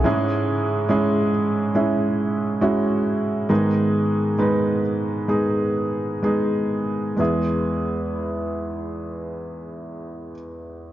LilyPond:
<<
  \new Staff \with { instrumentName = "Upright piano" } { \time 4/4 \key e \major \tempo 4 = 65 << { e''16 r2. r8. | r1 | r1 | } \\ { <gis cis' e' gis'>4 <gis cis' e' gis'>4 <gis cis' e' gis'>4 <gis cis' e' fis'>4 | <gis b dis' gis'>4 <gis b dis' b'>4 <gis b dis' gis'>4 <gis b dis' gis'>4 | <gis b e' gis'>1 | } >> }
  \new Staff \with { instrumentName = "Upright piano" } { \clef bass \time 4/4 \key e \major gis,4. r2 r8 | <gis, dis>4. r2 r8 | e,1 | }
>>